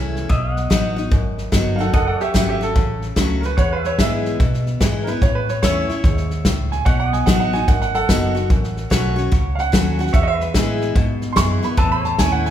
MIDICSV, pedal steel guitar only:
0, 0, Header, 1, 2, 480
1, 0, Start_track
1, 0, Key_signature, 4, "major"
1, 0, Tempo, 410116
1, 349, Time_signature, 4, 2, 24, 8
1, 14634, End_track
2, 0, Start_track
2, 0, Title_t, "Pedal steel guitar"
2, 0, Program_c, 0, 26
2, 0, Note_on_c, 0, 73, 64
2, 0, Note_on_c, 0, 76, 65
2, 321, Note_off_c, 0, 73, 0
2, 331, Note_off_c, 0, 76, 0
2, 344, Note_on_c, 0, 75, 66
2, 354, Note_on_c, 0, 76, 62
2, 647, Note_off_c, 0, 76, 0
2, 647, Note_on_c, 0, 78, 62
2, 2248, Note_off_c, 0, 75, 0
2, 2253, Note_off_c, 0, 78, 0
2, 2266, Note_on_c, 0, 75, 61
2, 2275, Note_on_c, 0, 78, 64
2, 2559, Note_off_c, 0, 75, 0
2, 2559, Note_on_c, 0, 73, 61
2, 4170, Note_off_c, 0, 73, 0
2, 4174, Note_off_c, 0, 78, 0
2, 4179, Note_on_c, 0, 73, 62
2, 4195, Note_on_c, 0, 78, 62
2, 4471, Note_off_c, 0, 73, 0
2, 4471, Note_on_c, 0, 71, 62
2, 4488, Note_off_c, 0, 78, 0
2, 4488, Note_on_c, 0, 76, 62
2, 6087, Note_off_c, 0, 71, 0
2, 6095, Note_off_c, 0, 76, 0
2, 6587, Note_on_c, 0, 73, 64
2, 6604, Note_on_c, 0, 76, 70
2, 8016, Note_off_c, 0, 73, 0
2, 8025, Note_off_c, 0, 76, 0
2, 8025, Note_on_c, 0, 73, 67
2, 8037, Note_on_c, 0, 78, 69
2, 8318, Note_off_c, 0, 73, 0
2, 8318, Note_on_c, 0, 75, 67
2, 9930, Note_off_c, 0, 75, 0
2, 9936, Note_off_c, 0, 78, 0
2, 10430, Note_on_c, 0, 73, 68
2, 10436, Note_on_c, 0, 78, 67
2, 11855, Note_off_c, 0, 73, 0
2, 11855, Note_on_c, 0, 73, 63
2, 11860, Note_off_c, 0, 78, 0
2, 11870, Note_on_c, 0, 78, 64
2, 12148, Note_off_c, 0, 73, 0
2, 12148, Note_on_c, 0, 71, 63
2, 12163, Note_off_c, 0, 78, 0
2, 12163, Note_on_c, 0, 76, 64
2, 13764, Note_off_c, 0, 71, 0
2, 13771, Note_off_c, 0, 76, 0
2, 13784, Note_on_c, 0, 71, 67
2, 13796, Note_on_c, 0, 76, 68
2, 14077, Note_off_c, 0, 71, 0
2, 14077, Note_on_c, 0, 73, 67
2, 14634, Note_off_c, 0, 73, 0
2, 14634, Note_off_c, 0, 76, 0
2, 14634, End_track
0, 0, End_of_file